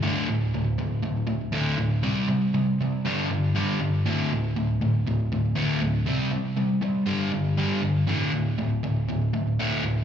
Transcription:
\new Staff \with { instrumentName = "Overdriven electric guitar" } { \clef bass \time 4/4 \key c \lydian \tempo 4 = 119 <d, a, d>8 <d, a,>8 <d, a,>8 <d, a,>8 <d, a,>8 <d, a,>8 <d, a, d>8 <d, a,>8 | <c g c'>8 <c g>8 <c g>8 <c g>8 <g, d g>8 <g, d>8 <g, d g>8 <g, d>8 | <d, a, d>8 <d, a,>8 <d, a,>8 <d, a,>8 <d, a,>8 <d, a,>8 <d, a, d>8 <d, a,>8 | <c g c'>8 <c g>8 <c g>8 <c g>8 <g, d g>8 <g, d>8 <g, d g>8 <g, d>8 |
<d, a, d>8 <d, a,>8 <d, a,>8 <d, a,>8 <d, a,>8 <d, a,>8 <d, a, d>8 <d, a,>8 | }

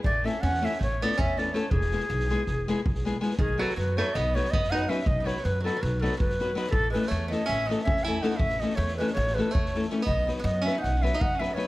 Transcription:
<<
  \new Staff \with { instrumentName = "Ney" } { \time 9/8 \key e \mixolydian \tempo 4. = 108 d''8 e''8 fis''8 e''8 cis''8 d''8 e''8 d''8 cis''8 | gis'2.~ gis'8 r4 | \key b \mixolydian gis'8 a'8 b'8 cis''8 dis''8 cis''8 dis''8 fis''8 e''8 | dis''16. dis''32 cis''8 b'8 a'8 b'8 a'8 b'4. |
a'8 b'8 cis''8 dis''8 e''8 dis''8 e''8 gis''8 fis''8 | e''8 dis''8 cis''8 b'8 cis''8 b'8 cis''4. | dis''8 r8 dis''8 e''8 fis''8 e''8 fis''8 e''8 cis''8 | }
  \new Staff \with { instrumentName = "Nylon-string guitar" } { \time 9/8 \key e \mixolydian r8 <a cis' e' a'>8 r8 <a cis' e' a'>8 r8 <a cis' e' a'>8 r8 <a cis' e' a'>8 <a cis' e' a'>8 | r8 <gis b e' gis'>8 r8 <gis b e' gis'>8 r8 <gis b e' gis'>8 r8 <gis b e' gis'>8 <gis b e' gis'>8 | \key b \mixolydian r8 <fis b dis' fis' b'>8 r8 <fis b dis' fis' b'>8 r8 <fis b dis' fis' b'>8 r8 <fis b dis' fis' b'>8 <fis b dis' fis' b'>8 | r8 <fis b dis' fis' b'>8 r8 <fis b dis' fis' b'>8 r8 <fis b dis' fis' b'>8 r8 <fis b dis' fis' b'>8 <fis b dis' fis' b'>8 |
r8 <e a cis' e' a'>8 r8 <e a cis' e' a'>8 r8 <e a cis' e' a'>8 r8 <e a cis' e' a'>8 <e a cis' e' a'>8 | r8 <e a cis' e' a'>8 r8 <e a cis' e' a'>8 r8 <e a cis' e' a'>8 r8 <e a cis' e' a'>8 <e a cis' e' a'>8 | r8 <fis b dis' fis' b'>8 r8 <fis b dis' fis' b'>8 r8 <fis b dis' fis' b'>8 r8 <fis b dis' fis' b'>8 <fis b dis' fis' b'>8 | }
  \new Staff \with { instrumentName = "Resonator guitar played with a steel bar" } { \time 9/8 \key e \mixolydian a8 cis'8 cis'8 cis'8 a8 b8 cis'8 b8 a8 | e2.~ e8 r4 | \key b \mixolydian dis8 fis8 fis8 a8 b8 a8 b8 dis'8 cis'8 | b16. b32 a8 fis8 fis8 fis8 fis8 fis4. |
e8 gis8 a8 b8 cis'8 b8 cis'8 e'8 dis'8 | cis'8 b8 a8 gis8 a8 gis8 a4. | b8 r8 b8 cis'8 dis'8 cis'8 dis'8 cis'8 a8 | }
  \new Staff \with { instrumentName = "Upright bass" } { \clef bass \time 9/8 \key e \mixolydian a,,4 e,4 a,,4 e,4. | e,,4 b,,4 e,,4 b,,4. | \key b \mixolydian b,,4 fis,4 b,,4 fis,4. | b,,4 fis,4 b,,4 fis,4. |
a,,4 e,4 a,,4 e,4. | a,,4 e,4 a,,4 e,4. | b,,4 fis,4 b,,4 fis,4. | }
  \new DrumStaff \with { instrumentName = "Drums" } \drummode { \time 9/8 bd8 sn8 sn16 sn16 sn16 sn16 <bd sn>8 sn16 sn16 bd8 sn8 sn8 | bd16 sn16 sn16 sn16 sn16 sn16 sn8 <bd sn>8 sn8 bd16 sn16 sn8 sn16 sn16 | bd8 sn16 sn16 sn8 sn8 sn8 sn16 sn16 bd16 sn16 sn8 sn16 sn16 | bd8 sn16 sn16 sn8 sn8 sn8 sn16 sn16 bd16 sn16 sn8 sn16 sn16 |
bd8 sn16 sn16 sn8 sn8 sn8 sn16 sn16 bd16 sn16 sn8 sn16 sn16 | bd16 sn16 sn16 sn16 sn16 sn16 sn16 sn16 sn16 sn16 sn8 bd16 sn16 sn16 sn16 sn8 | bd8 sn16 sn16 sn8 sn8 sn8 sn16 sn16 bd8 sn8 sn8 | }
>>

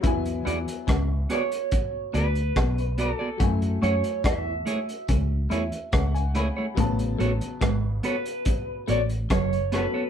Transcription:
<<
  \new Staff \with { instrumentName = "Clean electric guitar" } { \time 4/4 \key a \major \tempo 4 = 71 r4. cis''4 b'4 a'8~ | a'8 cis''8 e''4. r4. | r4. b'4 d''8 cis''8 b'8 | }
  \new Staff \with { instrumentName = "Clean electric guitar" } { \time 4/4 \key a \major r8 <b fis' gis' d''>16 r8. <b fis' gis' d''>16 r8. <b fis' gis' d''>16 r8. <b fis' gis' d''>16 <b fis' gis' d''>16 | r8 <a e' gis' cis''>16 r8. <a e' gis' cis''>16 r8. <a e' gis' cis''>16 r8. <a e' gis' cis''>16 <a e' gis' cis''>16 | r8 <b fis' a' cis''>16 r8. <b fis' a' cis''>16 r8. <b fis' a' cis''>16 r8. <b fis' a' cis''>16 <b fis' a' cis''>16 | }
  \new Staff \with { instrumentName = "Grand piano" } { \time 4/4 \key a \major r1 | r2 r8 e''8 fis''16 gis''16 b''8 | r1 | }
  \new Staff \with { instrumentName = "Grand piano" } { \time 4/4 \key a \major <fis b e' gis''>1 | <fis a e' gis''>1 | <cis fis b a''>2.~ <cis fis b a''>8 <fis b cis' a'>8 | }
  \new Staff \with { instrumentName = "Clean electric guitar" } { \time 4/4 \key a \major e'8 e'16 r16 cis'8 r4 d'8 b8 r8 | fis'8 fis'16 r16 e'8 r8 cis'8 e'16 r16 cis'8 r8 | a8 a16 r16 gis8 r4 a8 fis8 r8 | }
  \new Staff \with { instrumentName = "Fingered electric bass" } { \clef bass \time 4/4 \key a \major e,8 e,16 r16 cis,8 r4 d,8 b,,8. r16 | fis,8 fis,16 r16 e,8 r8 cis,8 e,16 r16 cis,8. r16 | a,,8 a,,16 r16 gis,,8 r4 a,,8 fis,,8. r16 | }
  \new DrumStaff \with { instrumentName = "Drums" } \drummode { \time 4/4 <hh bd>16 hh16 hh16 hh16 <hh bd ss>8 <hh ss>16 hh16 <hh bd>8 hh16 hh16 <hh bd ss>16 hh16 hh8 | <hh bd>16 hh16 hh16 hh16 <hh bd ss>8 hh16 hh16 <hh bd>8 hh16 hh16 <hh bd ss>16 hh16 hh8 | <hh bd>16 hh16 hh16 hh16 <hh bd ss>8 hh16 hh16 <hh bd>8 hh16 hh16 <hh bd ss>16 hh16 <hh ss>8 | }
>>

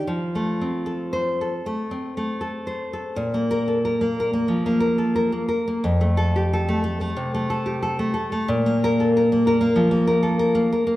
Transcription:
\new Staff \with { instrumentName = "Nylon-string guitar" } { \time 4/4 \key f \mixolydian \tempo 4 = 90 << { r4 \tuplet 3/2 { r8 c''4 } r2 | r8 bes'8 r2. | r8 a'8 r2. | r8 bes'8 r2. | } \\ { \tuplet 3/2 { f8 a8 c'8 a'4 a'8 a8 c'8 a8 a'8 c''8 a'8 } | bes,16 bes8 a'16 bes'16 bes16 bes'16 bes16 f16 bes16 bes'16 a'16 bes'16 bes16 bes'16 bes16 | f,16 a8 g'16 a'16 a16 a'16 a16 c16 a16 a'16 g'16 a'16 a16 a'16 a16 | bes,16 bes8 a'16 bes'16 bes16 bes'16 bes16 f16 bes16 bes'16 a'16 bes'16 bes16 bes'16 bes16 | } >> }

